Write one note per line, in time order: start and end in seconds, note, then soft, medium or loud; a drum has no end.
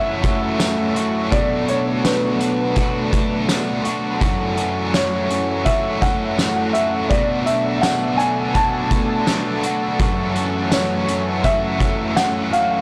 0.00 0.23 F#2 medium
0.00 1.32 F#2 medium
0.00 0.24 C#3 medium
0.00 0.24 E3 medium
0.00 9.96 F#3 medium
0.00 0.23 A3 medium
0.00 0.24 A3 medium
0.00 9.96 A3 medium
0.00 0.23 C#4 medium
0.00 0.59 C#4 medium
0.00 1.29 C#4 medium
0.00 1.29 E4 medium
0.00 0.20 F#4 medium
0.00 4.18 A4 medium
0.00 1.36 E5 loud
0.22 0.58 A3 soft
0.22 0.60 C#4 soft
0.22 0.59 F#4 medium
0.22 kick medium
0.22 closed hi-hat medium
0.27 0.56 E3 soft
0.57 0.95 E3 medium
0.57 0.96 A3 medium
0.57 0.95 C#4 medium
0.57 snare medium
0.57 closed hi-hat medium
0.57 tambourine medium
0.63 0.93 F#4 medium
0.94 1.31 A3 medium
0.94 1.32 C#4 soft
0.94 1.31 F#4 medium
0.94 closed hi-hat medium
0.98 1.31 E3 soft
1.31 1.68 B2 medium
1.31 1.68 F#3 medium
1.31 1.69 A3 medium
1.31 4.19 B3 medium
1.31 4.19 D4 medium
1.31 1.68 D4 medium
1.31 1.65 F#4 medium
1.31 1.69 D5 loud
1.31 kick loud
1.31 closed hi-hat medium
1.66 2.05 D4 medium
1.66 2.04 F#4 medium
1.66 2.06 C#5 medium
1.66 closed hi-hat soft
1.71 2.04 A3 soft
2.04 2.40 F#3 medium
2.04 2.41 A3 medium
2.04 2.41 D4 medium
2.04 3.09 B4 medium
2.04 snare loud
2.04 closed hi-hat medium
2.04 tambourine medium
2.08 2.38 F#4 medium
2.39 2.76 D4 medium
2.39 2.76 F#4 medium
2.39 closed hi-hat medium
2.45 2.76 A3 soft
2.75 3.12 B2 medium
2.75 3.13 F#3 medium
2.75 3.13 A3 medium
2.75 3.13 D4 medium
2.75 3.11 F#4 medium
2.75 kick medium
2.75 closed hi-hat medium
3.12 3.50 D4 medium
3.12 3.49 F#4 medium
3.12 kick medium
3.12 closed hi-hat medium
3.17 3.48 A3 soft
3.48 3.85 F#3 medium
3.48 3.86 A3 medium
3.48 3.85 D4 medium
3.48 snare medium
3.48 closed hi-hat medium
3.48 tambourine medium
3.53 3.82 F#4 medium
3.84 4.22 D4 medium
3.84 4.21 F#4 medium
3.84 closed hi-hat medium
3.89 4.21 A3 soft
4.20 4.57 F#2 medium
4.20 4.57 C#3 medium
4.20 4.58 E3 medium
4.20 4.58 A3 medium
4.20 7.07 C#4 medium
4.20 4.57 C#4 medium
4.20 7.07 E4 medium
4.20 4.56 F#4 medium
4.20 12.81 A4 medium
4.20 kick loud
4.20 closed hi-hat medium
4.57 4.93 A3 medium
4.57 4.94 C#4 medium
4.57 4.93 F#4 medium
4.57 closed hi-hat medium
4.61 4.91 E3 soft
4.92 5.29 E3 medium
4.92 5.30 A3 medium
4.92 5.62 C#5 medium
4.92 snare loud
4.92 closed hi-hat medium
4.92 tambourine medium
4.96 5.30 C#4 medium
4.96 5.27 F#4 medium
5.29 5.66 A3 soft
5.29 5.66 C#4 medium
5.29 5.65 F#4 medium
5.29 closed hi-hat medium
5.34 5.65 E3 soft
5.65 6.02 F#2 medium
5.65 6.02 C#3 medium
5.65 6.02 E3 medium
5.65 6.03 A3 medium
5.65 6.01 C#4 medium
5.65 6.00 F#4 medium
5.65 6.03 E5 medium
5.65 kick medium
5.65 closed hi-hat medium
6.01 6.38 A3 soft
6.01 6.38 C#4 medium
6.01 6.38 F#4 medium
6.01 6.77 F#5 loud
6.01 kick medium
6.01 closed hi-hat medium
6.05 6.36 E3 soft
6.37 6.74 E3 medium
6.37 6.75 A3 medium
6.37 6.74 C#4 medium
6.37 snare medium
6.37 closed hi-hat medium
6.37 tambourine medium
6.42 6.73 F#4 medium
6.73 7.10 A3 soft
6.73 7.11 C#4 soft
6.73 7.10 F#4 soft
6.73 7.11 E5 medium
6.73 closed hi-hat medium
6.78 7.10 E3 soft
7.09 7.46 B2 medium
7.09 7.47 F#3 medium
7.09 7.47 A3 medium
7.09 9.97 B3 medium
7.09 9.97 D4 medium
7.09 7.46 D4 medium
7.09 7.44 F#4 medium
7.09 7.47 D5 loud
7.09 kick loud
7.09 closed hi-hat medium
7.45 7.83 D4 soft
7.45 7.82 F#4 medium
7.45 7.84 E5 medium
7.45 closed hi-hat medium
7.50 7.81 A3 soft
7.81 8.18 F#3 medium
7.81 8.19 A3 medium
7.81 8.19 D4 medium
7.81 8.19 F#5 medium
7.81 snare loud
7.81 closed hi-hat medium
7.81 tambourine medium
7.86 8.16 F#4 medium
8.17 8.55 D4 medium
8.17 8.54 F#4 medium
8.17 8.52 G#5 loud
8.17 closed hi-hat medium
8.23 8.55 A3 soft
8.54 8.91 B2 medium
8.54 8.91 F#3 medium
8.54 8.92 A3 medium
8.54 8.91 D4 medium
8.54 8.88 F#4 medium
8.54 9.23 A5 loud
8.54 kick medium
8.54 closed hi-hat medium
8.89 9.28 D4 medium
8.89 9.26 F#4 medium
8.89 kick medium
8.89 closed hi-hat medium
8.95 9.26 A3 soft
9.26 9.63 F#3 medium
9.26 9.64 A3 medium
9.26 9.63 D4 medium
9.26 snare medium
9.26 closed hi-hat medium
9.26 tambourine medium
9.31 9.61 F#4 medium
9.62 10.00 D4 medium
9.62 9.99 F#4 medium
9.62 closed hi-hat medium
9.67 9.99 A3 medium
9.99 10.35 F#2 medium
9.99 10.36 C#3 medium
9.99 10.36 E3 loud
9.99 12.81 E3 medium
9.99 12.81 F#3 medium
9.99 12.81 A3 medium
9.99 10.36 A3 loud
9.99 12.81 C#4 medium
9.99 10.35 C#4 loud
9.99 10.33 F#4 loud
9.99 kick loud
9.99 closed hi-hat medium
10.34 10.71 A3 soft
10.34 10.72 C#4 medium
10.34 10.71 F#4 medium
10.34 closed hi-hat medium
10.39 10.70 E3 medium
10.71 11.08 E3 medium
10.71 11.08 A3 medium
10.71 11.07 C#4 medium
10.71 11.47 C#5 medium
10.71 snare loud
10.71 closed hi-hat medium
10.71 tambourine medium
10.76 11.05 F#4 medium
11.06 11.43 A3 soft
11.06 11.44 C#4 medium
11.06 11.43 F#4 soft
11.06 closed hi-hat medium
11.11 11.43 E3 soft
11.42 11.80 F#2 medium
11.42 11.80 C#3 medium
11.42 11.80 E3 medium
11.42 11.81 A3 medium
11.42 11.80 C#4 medium
11.42 11.78 F#4 medium
11.42 12.19 E5 loud
11.42 kick medium
11.42 closed hi-hat medium
11.79 12.16 A3 soft
11.79 12.17 C#4 medium
11.79 12.16 F#4 medium
11.79 kick medium
11.79 closed hi-hat medium
11.84 12.14 E3 soft
12.16 12.52 E3 medium
12.16 12.53 A3 medium
12.16 12.52 C#4 medium
12.16 12.54 F#5 loud
12.16 snare loud
12.16 closed hi-hat medium
12.16 tambourine medium
12.20 12.50 F#4 medium
12.51 12.81 A3 soft
12.51 12.81 C#4 soft
12.51 12.81 F#4 medium
12.51 12.81 F5 medium
12.51 closed hi-hat medium
12.56 12.81 E3 soft